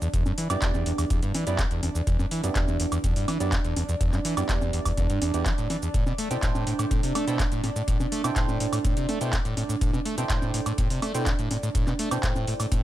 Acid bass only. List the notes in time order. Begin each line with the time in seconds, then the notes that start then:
0.02 E2
0.14 E2
0.26 F#2
0.38 E3
0.50 F#2
0.62 E2
0.74 E2
0.86 E2
0.98 E2
1.10 E2
1.23 G2
1.35 E3
1.47 F#2
1.59 E2
1.71 E2
1.83 E2
1.95 E2
2.07 E2
2.19 F#2
2.31 E3
2.44 F#2
2.56 E2
2.68 E2
2.80 E2
2.92 E2
3.04 E2
3.16 G2
3.28 E3
3.40 F#2
3.52 E2
3.65 E2
3.77 E2
3.89 E2
4.01 E2
4.13 F#2
4.25 E3
4.37 F#2
4.49 E2
4.61 E2
4.73 E2
4.86 E2
4.97 E2
5.10 G2
5.22 E2
5.34 E2
5.46 E3
5.58 A2
5.70 E3
5.82 E2
5.94 A2
6.07 B2
6.18 A3
6.31 B2
6.43 A2
6.55 A2
6.67 A2
6.79 A2
6.91 A2
7.03 C3
7.15 A3
7.27 B2
7.39 A2
7.52 A2
7.64 A2
7.76 A2
7.88 A2
8.00 B2
8.12 A3
8.24 B2
8.36 A2
8.48 A2
8.60 A2
8.73 A2
8.85 A2
8.97 C3
9.09 A3
9.21 B2
9.33 A2
9.45 A2
9.57 A2
9.69 A2
9.81 A2
9.94 B2
10.06 A3
10.18 B2
10.30 A2
10.42 A2
10.54 A2
10.66 A2
10.78 A2
10.90 C3
11.02 A3
11.15 B2
11.27 A2
11.39 A2
11.51 A2
11.63 A2
11.75 A2
11.87 B2
11.99 A3
12.11 B2
12.23 A2
12.36 A2
12.47 A2
12.60 A2
12.72 A2